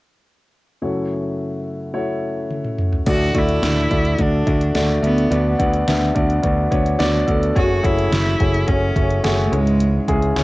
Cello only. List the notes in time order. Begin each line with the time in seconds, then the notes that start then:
3.09 F#4
3.38 E4
4.22 D4
5.04 B3
7.57 F#4
7.85 E4
8.68 C#4
9.46 A3
9.52 G#3